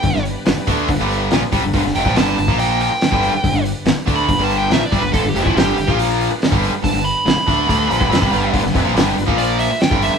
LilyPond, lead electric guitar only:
\new Staff \with { instrumentName = "Lead electric guitar" } { \time 4/4 \key g \mixolydian \tempo 4 = 142 g''8 r2. r8 | r8 g''8 a''4 g''8 g''4.~ | g''8 r8 \tuplet 3/2 { r4 b''8~ b''8 a''8 g''8 e''8 d''8 b'8 } | \tuplet 3/2 { a'8 g'8 e'8 } g'4 r2 |
a''8 b''8 b''2. | r2 d''8 e''8 g''8 e''8 | }